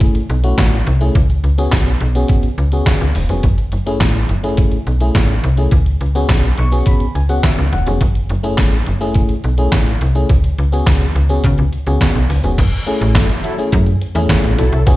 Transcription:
Already playing: fm electric piano A3 C#4 E4 G#4
0.00 kick, closed hi-hat
0.15 closed hi-hat
0.30 fm bass B1, closed hi-hat
0.43 fm electric piano A3 C#4 E4 F#4, closed hi-hat
0.58 fm bass A1, kick, snare, clap, closed hi-hat
0.72 closed hi-hat
0.87 fm bass C2, closed hi-hat
1.01 fm electric piano A3 C#4 E4 G#4, closed hi-hat
1.15 fm bass C#2, kick, closed hi-hat
1.30 closed hi-hat
1.44 fm bass C#2, closed hi-hat
1.58 fm electric piano B3 C#4 F#4 G#4, closed hi-hat
1.72 fm bass B1, kick, snare, clap, closed hi-hat
1.87 closed hi-hat
2.01 fm bass B1, closed hi-hat
2.15 fm electric piano B3 C#4 F#4 G#4, closed hi-hat
2.28 kick, closed hi-hat
2.43 closed hi-hat
2.58 fm bass C#2, closed hi-hat
2.72 fm electric piano B3 C#4 F#4 G#4, closed hi-hat
2.86 kick, snare, clap, closed hi-hat
3.00 fm bass C#2, closed hi-hat
3.15 fm bass E1, open hi-hat
3.29 fm bass F1, fm electric piano B3 C#4 F#4 G#4, closed hi-hat
3.43 fm bass F#1, kick, closed hi-hat
3.58 closed hi-hat
3.72 fm bass F#1, closed hi-hat
3.86 fm electric piano A3 C#4 E4 G#4, closed hi-hat
4.01 fm bass A1, kick, snare, clap, closed hi-hat
4.15 closed hi-hat
4.29 fm bass F#1, closed hi-hat
4.43 fm electric piano A3 C#4 E4 G#4, closed hi-hat
4.57 kick, closed hi-hat
4.71 closed hi-hat
4.87 fm bass B1, closed hi-hat
5.00 fm electric piano A3 C#4 E4 G#4, closed hi-hat
5.15 fm bass A1, kick, snare, clap, closed hi-hat
5.29 closed hi-hat
5.44 fm bass C2, closed hi-hat
5.57 fm electric piano A3 C#4 E4 G#4, closed hi-hat
5.71 fm bass C#2, kick, closed hi-hat
5.86 closed hi-hat
6.01 fm bass C#2, closed hi-hat
6.15 fm electric piano B3 C#4 F#4 G#4, closed hi-hat
6.29 fm bass B1, kick, snare, clap, closed hi-hat
6.44 closed hi-hat
6.58 fm bass B1, fm electric piano C#6, closed hi-hat
6.72 fm electric piano B3 C#4 F#4 G#4, closed hi-hat
6.86 fm electric piano B5, kick, closed hi-hat
7.00 closed hi-hat
7.15 fm bass C#2, fm electric piano G#5, closed hi-hat
7.29 fm electric piano B3 C#4 F#4 G#4 F#5, closed hi-hat
7.43 fm electric piano E5, kick, snare, clap, closed hi-hat
7.58 fm bass C#2, closed hi-hat
7.72 fm bass E1, fm electric piano F#5, closed hi-hat
7.86 fm bass F1, fm electric piano B3 C#4 F#4 G#4, closed hi-hat
8.01 fm bass F#1, kick, closed hi-hat
8.15 closed hi-hat
8.29 fm bass F#1, closed hi-hat
8.43 fm electric piano A3 C#4 E4 G#4, closed hi-hat
8.58 fm bass A1, kick, snare, clap, closed hi-hat
8.72 closed hi-hat
8.86 fm bass F#1, closed hi-hat
9.01 fm electric piano A3 C#4 E4 G#4, closed hi-hat
9.14 kick, closed hi-hat
9.29 closed hi-hat
9.44 fm bass B1, closed hi-hat
9.58 fm electric piano A3 C#4 E4 G#4, closed hi-hat
9.72 fm bass A1, kick, snare, clap, closed hi-hat
9.87 closed hi-hat
10.01 fm bass C2, closed hi-hat
10.15 fm electric piano A3 C#4 E4 G#4, closed hi-hat
10.29 fm bass C#2, kick, closed hi-hat
10.44 closed hi-hat
10.58 fm bass C#2, closed hi-hat
10.72 fm electric piano B3 C#4 F#4 G#4, closed hi-hat
10.87 fm bass C#2, kick, snare, clap, closed hi-hat
11.02 closed hi-hat
11.15 fm bass C#2, closed hi-hat
11.29 fm electric piano B3 C#4 F#4 G#4, closed hi-hat
11.44 fm bass C#3, kick, closed hi-hat
11.58 fm bass C#2, closed hi-hat
11.73 closed hi-hat
11.87 fm bass C#2, fm electric piano B3 C#4 F#4 G#4, closed hi-hat
12.01 kick, snare, clap, closed hi-hat
12.15 fm bass B1, closed hi-hat
12.30 fm bass C#2, open hi-hat
12.44 fm bass F1, fm electric piano B3 C#4 F#4 G#4, closed hi-hat
12.58 fm bass F#1, kick, closed hi-hat, crash
12.73 closed hi-hat
12.87 fm electric piano A3 C#4 E4 G#4, closed hi-hat
13.01 fm bass A1, closed hi-hat
13.15 fm bass F#1, analog polysynth F#3 E4 A4, kick, snare, clap, closed hi-hat
13.30 closed hi-hat
13.43 analog polysynth F#3 E4 A4, closed hi-hat
13.58 fm electric piano A3 C#4 E4 G#4, closed hi-hat
13.72 fm bass F#2, kick, closed hi-hat
13.86 closed hi-hat
14.01 closed hi-hat
14.15 fm bass E2, fm electric piano A3 C#4 E4 G#4, closed hi-hat
14.29 kick, snare, clap, closed hi-hat
14.44 fm bass A1, closed hi-hat
14.57 fm bass B1, analog polysynth F#3 E4 A4, closed hi-hat
14.72 fm bass C2, closed hi-hat
14.86 fm bass C#2, fm electric piano B3 C#4 F#4 G#4, kick, closed hi-hat

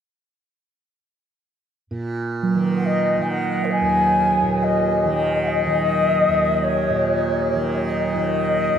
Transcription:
1.91 tanpura A#2
2.43 singing bowl F#3
2.55 tanpura D#3
2.77 native american-style wooden flute F#5
2.85 native american-style wooden flute D#5
3.17 tanpura D#3
3.22 native american-style wooden flute G#5
3.29 native american-style wooden flute F#5
3.64 native american-style wooden flute A#4
3.71 native american-style wooden flute G#5
3.81 tanpura D#2
4.43 tanpura A#2
4.63 native american-style wooden flute D#5
5.05 tanpura D#3
5.40 native american-style wooden flute F#5
5.47 native american-style wooden flute D#5
5.65 tanpura D#3
6.28 tanpura D#2
6.64 native american-style wooden flute C#5
6.90 tanpura A#2
7.53 tanpura D#3
7.88 native american-style wooden flute D#5
8.15 tanpura D#3
8.75 tanpura D#2

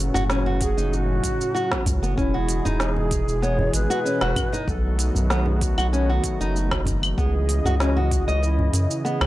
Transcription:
Already playing: analog synth bass F#1, analog synth pad A2 C#3 F#3 C#4 F#4, singing bowl C#4 C#5, native american-style wooden flute A4
0.14 analog synth bass F#1, nylon-string guitar F#4, djembe slap, djembe bass, shaker
0.30 nylon-string guitar C#4, snare, shaker
0.46 nylon-string guitar F#4, djembe tone
0.61 native american-style wooden flute G#4, kick, open hi-hat, shaker
0.77 analog synth bass F#1, nylon-string guitar D#4, shaker
0.93 native american-style wooden flute F#4, shaker
1.24 kick, open hi-hat, shaker
1.40 djembe tone, shaker
1.55 nylon-string guitar F#4, djembe slap, shaker
1.71 nylon-string guitar B3, kick, snare
1.86 analog synth bass C#2, kick, open hi-hat, djembe slap, djembe tone, djembe bass, shaker
2.02 analog synth bass F#1, nylon-string guitar B3, shaker
2.17 analog synth bass E1, analog synth pad B2 E3 G#3 G#4, nylon-string guitar C#4, native american-style wooden flute E4, kick, shaker
2.34 nylon-string guitar F#4
2.49 open hi-hat, shaker
2.65 analog synth bass E1, nylon-string guitar D#4, djembe slap, djembe tone, djembe bass, shaker
2.80 native american-style wooden flute G#4, snare, shaker
2.97 djembe tone
3.11 kick, open hi-hat, shaker
3.28 analog synth bass E1, shaker
3.42 nylon-string guitar B3, native american-style wooden flute C#5, djembe slap, shaker
3.59 djembe bass
3.74 analog synth bass G#1, native american-style wooden flute B4, open hi-hat, shaker
3.90 nylon-string guitar F#4, shaker
4.05 nylon-string guitar C#4, shaker
4.21 analog synth bass E1, nylon-string guitar F#4, snare, djembe slap, claves
4.36 kick, open hi-hat, djembe tone, djembe bass, claves, shaker
4.53 nylon-string guitar D#4, djembe slap, djembe tone, shaker
4.68 analog synth bass B1, analog synth pad D#3 F#3 A3 B3 F#4, native american-style wooden flute A4, kick, shaker
4.99 open hi-hat, shaker
5.15 analog synth bass B1, djembe slap, djembe bass, shaker
5.30 nylon-string guitar B3, native american-style wooden flute G#4, snare, shaker
5.46 djembe tone
5.61 native american-style wooden flute F#4, kick, open hi-hat, shaker
5.78 analog synth bass B1, nylon-string guitar F#4, claves, shaker
5.93 nylon-string guitar C#4, shaker
6.10 nylon-string guitar F#4
6.24 kick, open hi-hat, shaker
6.40 analog synth bass F#1, nylon-string guitar D#4, djembe tone, shaker
6.56 shaker
6.71 kick, snare, claves
6.85 kick, open hi-hat, djembe slap, djembe tone, djembe bass, shaker
7.03 claves, shaker
7.17 analog synth bass C#2, analog synth pad C#3 E3 D#5, nylon-string guitar B3, native american-style wooden flute G#4, kick, shaker
7.49 open hi-hat, shaker
7.65 analog synth bass C#2, nylon-string guitar F#4, djembe slap, djembe tone, djembe bass, shaker
7.80 nylon-string guitar C#4, native american-style wooden flute F#4, snare, shaker
7.97 nylon-string guitar F#4, djembe tone
8.11 kick, open hi-hat, shaker
8.27 analog synth bass C#2, nylon-string guitar D#5, shaker
8.42 native american-style wooden flute E4, djembe slap, shaker
8.59 djembe bass
8.73 analog synth bass F#2, open hi-hat, shaker
8.91 shaker
9.05 nylon-string guitar B3, native american-style wooden flute G#4, shaker
9.21 analog synth bass C#2, snare, djembe slap, claves

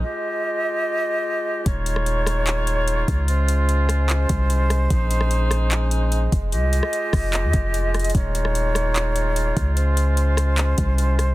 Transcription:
Already playing: woodwind section G#3
0.04 woodwind section F4 G4 D#5
1.66 808-style bass D#1, woodwind section G#3 D#4 F4 C#5, kick, closed hi-hat
1.86 closed hi-hat
1.96 cross-stick
2.06 closed hi-hat
2.27 cross-stick, closed hi-hat
2.47 clap, closed hi-hat
2.67 closed hi-hat
2.88 closed hi-hat
3.08 808-style bass C#2, kick, closed hi-hat
3.28 woodwind section G#3 C#4 C5, closed hi-hat
3.48 closed hi-hat
3.69 closed hi-hat
3.89 cross-stick, closed hi-hat
4.09 clap, closed hi-hat
4.29 808-style bass C2, kick, closed hi-hat
4.50 closed hi-hat
4.70 cross-stick, closed hi-hat
4.90 808-style bass A#1, woodwind section C#4 D#4, kick, closed hi-hat
5.11 closed hi-hat
5.21 cross-stick
5.31 closed hi-hat
5.51 cross-stick, closed hi-hat
5.71 clap, closed hi-hat
5.91 closed hi-hat
6.12 closed hi-hat
6.32 808-style bass F1, kick, closed hi-hat
6.52 808-style bass C2, woodwind section F4 G4 D#5, closed hi-hat
6.73 closed hi-hat
6.83 cross-stick
6.93 closed hi-hat
7.13 808-style bass F1, kick, cross-stick, open hi-hat
7.33 clap, closed hi-hat
7.44 808-style bass F2
7.53 808-style bass F1, kick, closed hi-hat
7.74 closed hi-hat
7.94 cross-stick, closed hi-hat
8.00 closed hi-hat
8.04 closed hi-hat
8.10 closed hi-hat
8.15 808-style bass D#1, woodwind section D#4 F4 C#5, kick, closed hi-hat
8.35 closed hi-hat
8.45 cross-stick
8.55 closed hi-hat
8.75 cross-stick, closed hi-hat
8.96 clap, closed hi-hat
9.16 closed hi-hat
9.36 closed hi-hat
9.57 808-style bass C#2, kick, closed hi-hat
9.77 woodwind section C#4 C5, closed hi-hat
9.97 closed hi-hat
10.17 closed hi-hat
10.37 cross-stick, closed hi-hat
10.58 clap, closed hi-hat
10.78 808-style bass C2, kick, closed hi-hat
10.98 closed hi-hat
11.19 cross-stick, closed hi-hat

